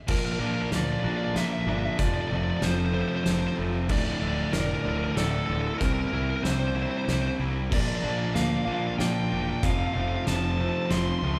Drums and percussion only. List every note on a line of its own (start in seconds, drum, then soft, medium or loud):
0.08 kick loud
0.08 crash loud
0.72 snare medium
0.72 closed hi-hat medium
1.36 snare medium
1.36 closed hi-hat medium
1.99 kick loud
1.99 closed hi-hat medium
2.62 snare medium
2.62 closed hi-hat medium
3.26 snare medium
3.26 closed hi-hat medium
3.89 kick loud
3.89 crash loud
4.53 snare medium
4.53 closed hi-hat medium
5.17 snare medium
5.17 closed hi-hat medium
5.81 kick loud
5.81 closed hi-hat medium
6.45 snare loud
6.45 closed hi-hat medium
7.09 snare medium
7.09 closed hi-hat medium
7.72 kick loud
7.72 crash loud
8.36 snare medium
8.36 closed hi-hat medium
9.00 snare loud
9.00 closed hi-hat medium
9.63 kick loud
9.63 closed hi-hat medium
10.27 snare medium
10.27 closed hi-hat medium
10.91 snare medium
10.91 closed hi-hat medium